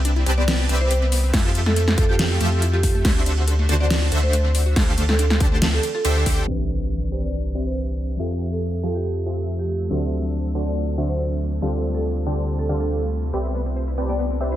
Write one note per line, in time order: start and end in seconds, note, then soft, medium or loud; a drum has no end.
0.00 0.24 C2 loud
0.00 0.24 C4 medium
0.00 0.24 G4 medium
0.00 0.24 B4 medium
0.00 0.24 D5 medium
0.00 0.24 E5 loud
0.05 0.13 D4 medium
0.05 closed hi-hat medium
0.16 0.23 E4 medium
0.26 0.67 C2 loud
0.26 0.67 C4 loud
0.26 0.37 G4 medium
0.26 0.67 G4 medium
0.26 0.67 B4 medium
0.26 0.67 D5 medium
0.26 0.67 A5 loud
0.26 closed hi-hat medium
0.38 0.47 B3 medium
0.38 0.56 D5 loud
0.48 0.52 B3 loud
0.48 snare loud
0.48 closed hi-hat medium
0.48 crash soft
0.59 0.63 C4 medium
0.69 1.31 C2 loud
0.69 1.31 C4 medium
0.69 0.77 D4 medium
0.69 1.31 G4 medium
0.69 1.31 B4 medium
0.69 1.31 D5 medium
0.69 1.31 E5 loud
0.69 closed hi-hat medium
0.81 0.87 E4 medium
0.81 0.87 C5 medium
0.91 1.01 G4 medium
0.91 0.98 C5 medium
0.91 closed hi-hat medium
1.02 1.11 B3 medium
1.12 1.17 B3 loud
1.12 open hi-hat medium
1.24 1.28 C4 medium
1.34 1.96 F2 loud
1.34 1.95 F3 loud
1.34 1.41 E4 medium
1.34 1.95 F4 medium
1.34 1.95 G4 medium
1.34 1.95 A4 medium
1.34 1.95 E5 loud
1.34 kick loud
1.34 snare medium
1.34 closed hi-hat medium
1.34 crash medium
1.45 1.52 F4 medium
1.55 1.66 A4 medium
1.55 closed hi-hat medium
1.66 1.75 A3 medium
1.66 1.85 A4 medium
1.66 snare medium
1.76 1.81 A3 loud
1.76 closed hi-hat medium
1.88 1.92 C4 medium
1.88 snare medium
1.98 2.39 F2 loud
1.98 2.38 F3 medium
1.98 2.05 E4 medium
1.98 2.38 F4 medium
1.98 2.38 G4 medium
1.98 2.07 A4 loud
1.98 2.38 A4 medium
1.98 2.38 G5 loud
1.98 kick loud
1.98 closed hi-hat medium
2.09 2.16 F4 medium
2.09 2.28 G4 medium
2.19 2.30 A4 medium
2.19 snare loud
2.19 closed hi-hat medium
2.19 crash soft
2.31 2.39 A3 medium
2.41 3.03 F2 loud
2.41 3.02 F3 medium
2.41 2.45 A3 loud
2.41 3.02 F4 medium
2.41 3.02 G4 medium
2.41 3.02 A4 medium
2.41 3.02 E5 medium
2.41 closed hi-hat medium
2.52 2.56 C4 medium
2.62 2.70 E4 medium
2.62 closed hi-hat medium
2.73 2.80 F4 medium
2.73 2.80 G4 medium
2.83 2.91 G4 medium
2.83 2.94 A4 medium
2.83 kick medium
2.83 open hi-hat loud
2.95 3.04 A3 medium
3.05 3.67 D2 loud
3.05 3.67 D3 medium
3.05 3.09 A3 loud
3.05 3.67 D4 medium
3.05 3.67 F#4 medium
3.05 3.67 C5 medium
3.05 3.67 E5 loud
3.05 kick loud
3.05 snare medium
3.05 closed hi-hat medium
3.05 crash medium
3.16 3.20 C4 medium
3.26 3.34 D4 medium
3.26 closed hi-hat medium
3.38 3.44 F#4 medium
3.48 3.58 A4 medium
3.48 closed hi-hat medium
3.59 3.68 A3 medium
3.69 4.10 D2 loud
3.69 4.10 D3 medium
3.69 3.74 A3 loud
3.69 4.10 D4 medium
3.69 4.10 F#4 medium
3.69 4.10 C5 medium
3.69 4.10 A5 loud
3.69 closed hi-hat medium
3.80 3.85 C4 medium
3.80 3.99 D5 medium
3.90 3.98 D4 medium
3.90 snare loud
3.90 closed hi-hat medium
3.90 crash soft
4.02 4.09 F#4 medium
4.12 4.74 D2 loud
4.12 4.74 D3 medium
4.12 4.74 D4 medium
4.12 4.74 F#4 medium
4.12 4.23 A4 medium
4.12 4.74 C5 medium
4.12 4.74 E5 loud
4.12 closed hi-hat medium
4.23 4.32 A3 medium
4.23 4.30 C5 medium
4.33 4.38 A3 loud
4.33 4.41 C5 medium
4.33 closed hi-hat medium
4.45 4.49 C4 medium
4.55 4.62 D4 medium
4.55 open hi-hat loud
4.66 4.73 F#4 medium
4.76 5.39 D2 loud
4.76 5.38 D3 medium
4.76 5.38 D4 medium
4.76 4.87 G4 medium
4.76 5.38 G4 medium
4.76 5.38 A4 medium
4.76 5.38 C5 medium
4.76 5.38 F5 loud
4.76 kick loud
4.76 snare medium
4.76 closed hi-hat medium
4.76 crash soft
4.87 4.96 A3 medium
4.98 5.02 A3 loud
4.98 closed hi-hat medium
5.09 5.13 C4 medium
5.09 5.28 A4 medium
5.09 snare medium
5.19 5.27 D4 medium
5.19 closed hi-hat medium
5.30 5.37 F4 medium
5.30 snare medium
5.40 5.79 D2 loud
5.40 5.81 D3 loud
5.40 5.81 D4 medium
5.40 5.81 G4 medium
5.40 5.51 G4 medium
5.40 5.81 A4 medium
5.40 5.81 C5 medium
5.40 5.81 A5 loud
5.40 kick loud
5.40 closed hi-hat medium
5.52 5.61 A3 medium
5.62 5.67 A3 loud
5.62 snare loud
5.62 closed hi-hat medium
5.62 crash soft
5.73 5.77 C4 medium
5.73 5.92 A4 medium
5.83 5.91 D4 medium
5.83 closed hi-hat medium
5.95 6.02 F4 medium
5.95 6.38 A4 loud
6.05 6.24 D2 loud
6.05 6.24 D3 medium
6.05 6.24 D4 medium
6.05 6.24 G4 medium
6.05 6.16 G4 medium
6.05 6.24 A4 medium
6.05 6.24 C5 medium
6.05 6.24 E5 medium
6.05 closed hi-hat medium
6.16 6.25 A3 medium
6.26 6.46 D2 loud
6.26 6.45 D3 loud
6.26 6.31 A3 loud
6.26 6.45 D4 medium
6.26 6.45 G4 medium
6.26 6.45 A4 medium
6.26 6.45 C5 medium
6.26 6.45 G5 loud
6.26 kick medium
6.26 open hi-hat loud
6.38 6.42 C4 medium
6.46 8.17 C2 medium
6.46 8.17 D3 medium
6.46 8.16 E3 medium
6.46 8.16 C4 medium
6.46 7.10 C4 medium
6.46 8.17 C4 medium
6.46 8.17 D4 medium
6.46 8.17 B4 medium
6.46 8.18 B4 medium
6.46 9.87 E5 medium
6.46 impact medium
7.12 7.52 C4 medium
7.12 7.52 G4 medium
7.12 7.52 B4 medium
7.12 7.52 D5 medium
7.12 7.52 A5 loud
7.23 7.42 D5 medium
7.55 8.17 C4 medium
7.55 8.17 G4 medium
7.55 8.17 B4 medium
7.55 8.17 D5 medium
7.55 8.17 E5 medium
7.66 7.73 C5 medium
7.76 7.84 C5 medium
8.17 9.89 F2 medium
8.17 14.56 C3 medium
8.17 9.87 F3 medium
8.17 9.89 F3 medium
8.17 8.81 F3 medium
8.17 13.29 A3 medium
8.17 9.88 C4 medium
8.17 8.81 F4 medium
8.17 8.81 G4 medium
8.17 8.81 A4 medium
8.17 9.89 A4 medium
8.17 8.81 E5 loud
8.17 9.88 E5 medium
8.52 8.71 A4 medium
8.83 9.24 F3 medium
8.83 9.24 F4 medium
8.83 9.24 G4 medium
8.83 8.93 A4 medium
8.83 9.24 A4 medium
8.83 9.24 G5 medium
8.95 9.14 G4 medium
9.26 9.88 F3 medium
9.26 9.88 F4 medium
9.26 9.88 G4 medium
9.26 9.88 A4 medium
9.26 9.88 E5 medium
9.59 9.66 G4 medium
9.69 9.77 G4 medium
9.89 11.60 D2 medium
9.89 10.52 D3 medium
9.89 11.59 F#3 medium
9.89 11.60 F#3 medium
9.89 11.59 C4 medium
9.89 11.60 D4 medium
9.89 10.52 D4 medium
9.89 11.60 D4 medium
9.89 10.53 F#4 medium
9.89 11.61 A4 medium
9.89 10.52 C5 medium
9.89 10.52 E5 loud
10.55 10.95 D3 medium
10.55 10.95 D4 medium
10.55 10.95 F#4 medium
10.55 10.95 C5 medium
10.55 10.95 A5 loud
10.66 10.85 D5 medium
10.98 11.60 D3 medium
10.98 11.60 D4 medium
10.98 11.60 F#4 medium
10.98 11.60 C5 medium
10.98 11.60 E5 medium
11.09 11.15 C5 medium
11.19 11.26 C5 medium
11.60 13.32 D2 medium
11.60 12.24 D3 medium
11.60 13.30 G3 medium
11.60 13.32 G3 medium
11.60 13.31 C4 medium
11.60 12.24 D4 medium
11.60 13.32 F4 medium
11.60 13.31 F4 medium
11.60 12.24 G4 medium
11.60 12.24 A4 medium
11.60 12.24 C5 medium
11.60 12.24 F5 loud
11.64 13.32 A4 medium
11.95 12.13 A4 medium
12.26 12.67 D3 medium
12.26 12.67 D4 medium
12.26 12.67 G4 medium
12.26 12.67 A4 medium
12.26 12.67 C5 medium
12.26 12.67 A5 loud
12.59 12.78 A4 medium
12.69 13.31 D3 medium
12.69 13.31 D4 medium
12.69 13.31 G4 medium
12.69 13.31 A4 medium
12.69 13.31 C5 medium
12.69 13.31 F5 medium
12.81 13.23 A4 medium
13.33 14.56 C2 medium
13.33 14.56 E3 medium
13.33 13.95 C4 medium
13.33 14.56 D4 medium
13.33 13.44 G4 medium
13.33 13.95 G4 medium
13.33 13.95 B4 medium
13.33 14.56 B4 medium
13.33 13.95 D5 medium
13.33 13.95 E5 loud
13.45 13.54 B3 medium
13.55 13.59 B3 medium
13.66 13.70 C4 medium
13.76 13.87 C5 medium
13.88 13.94 E4 medium
13.98 14.38 C4 medium
13.98 14.08 G4 medium
13.98 14.38 G4 medium
13.98 14.38 B4 medium
13.98 14.38 D5 medium
13.98 14.38 A5 loud
14.09 14.18 B3 medium
14.09 14.28 D5 medium
14.19 14.24 B3 medium
14.30 14.35 C4 medium
14.41 14.56 C4 medium
14.41 14.56 G4 medium
14.41 14.56 B4 medium
14.41 14.51 C5 medium
14.41 14.56 D5 medium
14.41 14.56 E5 medium
14.52 14.56 E4 medium
14.52 14.56 C5 medium